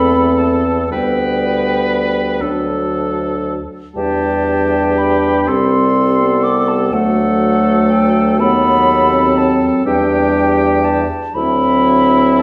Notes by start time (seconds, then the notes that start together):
Already playing: E2 A3 C4 A4 B5
0.38 A5
0.90 D2 G3 B3 B4 G5
2.41 D2 F#3 D4 A4
3.95 E2 G3 D4 G4 A5
4.98 B5
5.47 C2 G3 C4 A4 C6
6.21 B3
6.43 D6
6.68 A5
6.92 D2 F#3 A3 A4 F#5
7.90 G5
8.38 D#2 F#3 B3 A4 B5
9.13 C4
9.38 A5
9.85 E2 G3 D4 G4 G5
10.84 A5
11.34 D2 F#3 C4 E4 B5
12.39 A5